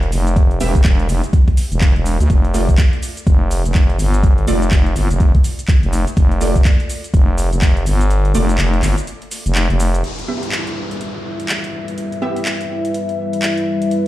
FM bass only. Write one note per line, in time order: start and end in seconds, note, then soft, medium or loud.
0.00 0.11 E1 loud
0.12 0.59 F1 loud
0.61 0.83 E1 medium
0.85 1.07 E1 loud
1.09 1.21 F1 loud
1.72 1.94 E1 medium
1.96 2.18 E1 loud
2.20 2.28 D2 medium
2.30 2.77 F1 loud
3.27 3.63 F1 loud
3.66 3.98 F1 medium
3.99 4.46 G1 loud
4.48 4.70 F1 medium
4.72 4.94 F1 loud
4.96 5.08 G1 loud
5.11 5.33 F1 loud
5.83 6.05 F1 loud
6.17 6.64 F1 loud
7.14 7.50 F1 loud
7.52 7.85 F1 medium
7.86 8.33 G1 loud
8.35 8.57 F1 loud
8.59 8.82 F1 loud
8.83 8.95 G1 medium
9.46 9.68 F1 medium
9.70 10.03 F1 loud